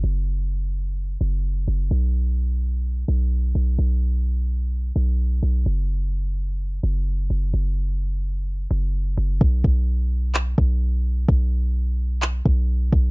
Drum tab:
CP |--------|--------|--------|--------|
BD |--------|--------|--------|--------|

CP |--------|----x---|----x---|
BD |--------|oo---o--|o----o-o|